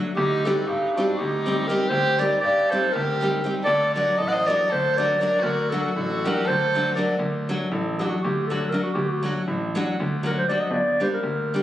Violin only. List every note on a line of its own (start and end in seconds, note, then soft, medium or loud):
0.16 0.47 D#4 medium
0.46 0.68 F#4 medium
0.67 0.94 D#4 medium
0.95 1.20 D4 medium
1.18 1.68 D#4 medium
1.67 1.89 G4 medium
1.89 2.20 G4 loud
2.19 2.41 A#4 medium
2.42 2.71 G4 medium
2.70 2.95 A4 medium
2.94 3.50 G4 medium
3.64 3.93 A4 loud
3.94 4.20 A#4 medium
4.18 4.30 A4 medium
4.29 4.47 C5 medium
4.29 4.34 D5 medium
4.45 4.71 A#4 medium
4.69 4.95 A4 medium
4.94 5.16 A#4 medium
5.17 5.41 A#4 medium
5.39 5.69 F#4 medium
5.69 5.94 F#4 medium
5.96 6.26 F#4 medium
6.24 6.47 G4 medium
6.45 6.94 A4 medium
6.94 7.17 A#4 medium